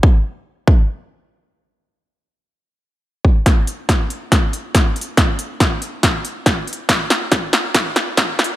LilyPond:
\new DrumStaff \with { instrumentName = "Drums" } \drummode { \time 4/4 \tempo 4 = 140 bd4 r8 bd8 r4 r4 | r4 r4 r4 r8 bd8 | <hh bd sn>8 hh8 <hh bd sn>8 hh8 <hh bd sn>8 hh8 <hh bd sn>8 hh32 hh16. | <hh bd sn>8 hh8 <hh bd sn>8 hh8 <hh bd sn>8 hh8 <hh bd sn>8 hh32 hh16. |
<hh bd sn>8 <hh sn>8 <hh bd sn>8 <hh sn>8 <hh bd sn>8 <hh sn>8 <hh bd sn>8 <hh sn>32 hh16. | }